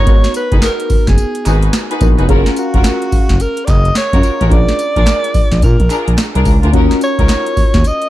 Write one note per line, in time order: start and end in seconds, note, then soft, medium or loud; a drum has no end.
0.00 0.32 C#5 loud
0.06 0.21 G#1 loud
0.06 1.97 B3 medium
0.06 1.98 D#4 medium
0.06 1.98 F#4 medium
0.06 1.98 A#4 medium
0.06 kick loud
0.06 closed hi-hat medium
0.24 snare medium
0.24 closed hi-hat medium
0.34 0.62 B4 loud
0.34 closed hi-hat medium
0.34 tambourine medium
0.51 0.61 F#1 medium
0.51 0.62 D#4 medium
0.51 0.62 F#4 medium
0.51 0.62 G#4 medium
0.51 0.63 B4 medium
0.51 kick medium
0.51 closed hi-hat medium
0.62 1.05 A#4 medium
0.62 snare loud
0.62 clap medium
0.62 closed hi-hat medium
0.62 tambourine loud
0.80 closed hi-hat medium
0.90 0.97 F#1 medium
0.90 kick medium
0.90 open hi-hat medium
0.90 tambourine medium
1.07 1.16 F#1 medium
1.07 1.60 G#4 medium
1.07 kick medium
1.07 snare medium
1.07 closed hi-hat medium
1.18 closed hi-hat medium
1.18 tambourine medium
1.35 closed hi-hat medium
1.45 1.69 G#1 medium
1.45 1.63 D#4 medium
1.45 1.63 F#4 medium
1.45 1.63 G#4 medium
1.45 1.63 B4 medium
1.45 clap medium
1.45 closed hi-hat medium
1.45 tambourine medium
1.63 closed hi-hat medium
1.73 snare loud
1.73 clap medium
1.73 closed hi-hat medium
1.73 tambourine loud
1.90 2.01 D#4 medium
1.90 2.01 F#4 medium
1.90 2.01 G#4 medium
1.90 2.02 B4 medium
1.90 closed hi-hat medium
2.01 2.16 A#1 medium
2.01 2.29 B3 medium
2.01 2.29 D#4 medium
2.01 2.29 F#4 medium
2.01 2.29 A#4 medium
2.01 kick loud
2.01 closed hi-hat medium
2.01 tambourine medium
2.18 2.27 F1 medium
2.18 2.29 D#4 medium
2.18 2.28 F#4 medium
2.18 2.29 G#4 medium
2.18 2.29 B4 medium
2.18 closed hi-hat soft
2.28 2.43 F#1 loud
2.28 4.47 C#4 medium
2.28 2.46 C#4 medium
2.28 2.46 F4 medium
2.28 2.46 F#4 medium
2.28 4.48 G#4 medium
2.28 2.46 A#4 loud
2.28 4.48 A#4 medium
2.28 4.47 F5 medium
2.28 kick loud
2.28 closed hi-hat medium
2.46 snare medium
2.46 closed hi-hat medium
2.56 3.43 F#4 loud
2.56 closed hi-hat medium
2.56 tambourine medium
2.74 2.83 F1 medium
2.74 2.85 C#4 medium
2.74 2.85 F4 medium
2.74 2.85 F#4 medium
2.74 2.85 A#4 medium
2.74 kick loud
2.74 closed hi-hat medium
2.84 snare loud
2.84 clap medium
2.84 closed hi-hat medium
2.84 tambourine loud
3.02 closed hi-hat medium
3.12 3.19 F#1 medium
3.12 kick loud
3.12 open hi-hat medium
3.12 tambourine medium
3.29 3.39 F#1 medium
3.29 kick medium
3.29 snare medium
3.29 closed hi-hat soft
3.40 3.66 A#4 medium
3.40 closed hi-hat medium
3.40 tambourine medium
3.57 closed hi-hat medium
3.65 3.91 F#1 medium
3.65 3.71 D5 medium
3.65 kick loud
3.65 clap medium
3.65 closed hi-hat medium
3.65 tambourine medium
3.70 3.97 D#5 loud
3.85 closed hi-hat medium
3.95 4.54 C#5 loud
3.95 snare loud
3.95 clap medium
3.95 closed hi-hat medium
3.95 tambourine medium
4.13 4.22 F#2 medium
4.13 4.23 C#4 medium
4.13 4.24 F4 medium
4.13 4.24 F#4 medium
4.13 4.24 A#4 medium
4.13 kick loud
4.13 closed hi-hat medium
4.23 closed hi-hat medium
4.23 tambourine medium
4.40 4.50 A1 medium
4.40 4.51 C#4 medium
4.40 4.51 F4 medium
4.40 4.51 F#4 medium
4.40 4.51 A#4 medium
4.40 closed hi-hat soft
4.50 4.66 A#1 loud
4.50 6.69 D4 medium
4.50 6.69 F4 medium
4.50 6.70 G#4 medium
4.50 6.70 A#4 medium
4.50 5.63 D5 loud
4.50 kick loud
4.50 closed hi-hat medium
4.68 snare medium
4.68 closed hi-hat medium
4.79 closed hi-hat medium
4.79 tambourine medium
4.96 5.05 A#1 medium
4.96 5.07 D4 medium
4.96 5.07 F4 medium
4.96 5.07 G#4 medium
4.96 5.07 A#4 medium
4.96 kick loud
4.96 closed hi-hat medium
5.07 snare loud
5.07 clap medium
5.07 closed hi-hat medium
5.07 tambourine loud
5.24 closed hi-hat medium
5.34 5.42 A#1 medium
5.34 kick medium
5.34 open hi-hat medium
5.34 tambourine medium
5.52 5.61 A#1 medium
5.52 kick medium
5.52 snare medium
5.52 closed hi-hat soft
5.62 5.77 A#2 loud
5.62 6.15 A#4 medium
5.62 kick loud
5.62 closed hi-hat medium
5.62 tambourine medium
5.80 5.88 A#1 medium
5.80 closed hi-hat medium
5.90 6.07 D4 medium
5.90 6.07 F4 medium
5.90 6.07 G#4 medium
5.90 6.08 A#4 medium
5.90 clap medium
5.90 closed hi-hat medium
5.90 tambourine medium
6.07 6.16 A#1 medium
6.07 closed hi-hat medium
6.18 snare loud
6.18 clap medium
6.18 closed hi-hat medium
6.18 tambourine medium
6.35 6.44 C2 medium
6.35 6.46 D4 medium
6.35 6.46 F4 medium
6.35 6.46 G#4 medium
6.35 6.46 A#4 medium
6.35 closed hi-hat medium
6.45 6.60 C#2 loud
6.45 kick loud
6.45 open hi-hat medium
6.45 tambourine medium
6.63 6.72 D2 medium
6.63 6.74 D4 medium
6.63 6.74 F4 medium
6.63 6.74 G#4 medium
6.63 6.73 A#4 medium
6.63 closed hi-hat soft
6.73 6.88 D#2 loud
6.73 8.09 C#4 medium
6.73 6.91 C#4 loud
6.73 6.91 D#4 medium
6.73 8.09 F4 medium
6.73 6.91 F#4 medium
6.73 8.09 F#4 medium
6.73 6.91 A#4 loud
6.73 8.09 A#4 medium
6.73 kick loud
6.73 closed hi-hat medium
6.91 snare medium
6.91 closed hi-hat medium
7.01 7.89 C#5 loud
7.01 closed hi-hat medium
7.01 tambourine medium
7.19 7.28 C#2 medium
7.19 7.29 C#4 medium
7.19 7.29 D#4 medium
7.19 7.29 F#4 medium
7.19 7.30 A#4 medium
7.19 kick medium
7.19 closed hi-hat medium
7.29 snare loud
7.29 clap medium
7.29 closed hi-hat medium
7.29 tambourine loud
7.46 closed hi-hat medium
7.57 7.64 D#2 medium
7.57 kick loud
7.57 open hi-hat medium
7.57 tambourine medium
7.74 7.83 D#2 medium
7.74 kick medium
7.74 snare medium
7.74 closed hi-hat soft
7.84 8.09 D#5 loud
7.84 closed hi-hat medium
7.84 tambourine medium
8.02 closed hi-hat medium